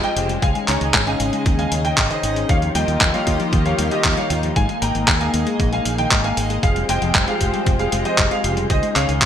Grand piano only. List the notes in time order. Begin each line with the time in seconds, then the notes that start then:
0.04 D#5 G5
0.42 F5 G#5
0.68 C#5 A#5
1.07 F5 G#5
1.59 F5 G#5
1.84 D#5 G5
2.10 C5 D#5
2.49 C#5 F5
2.75 D#5 G5
3.14 C#5 F5
3.66 C#5 F5
3.91 G4 D#5
4.17 C#5 F5
4.56 F5 G#5
4.82 G5 A#5
5.21 F5 G#5
5.73 F5 G#5
5.98 D#5 G5
6.24 F5 G#5
6.63 G#4 F5
6.89 D#5 G5
7.28 G#4 F5
7.79 G#4 F5
8.05 C5 D#5
8.31 G#4 F5
8.70 C5 D#5
8.96 C#5 F5